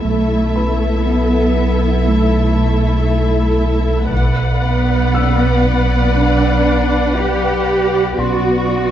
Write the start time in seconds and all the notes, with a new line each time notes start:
0.04 B1 A3 E4 A4 E5 B5
0.56 B4 B5
1.05 B3
2.07 A3
4.11 B1 B4 D5 F#5 B5, taiko
4.62 B3
5.14 E6
5.64 taiko
6.14 D4
7.17 G4
8.17 B1 B3 F#4 D5 C6 D6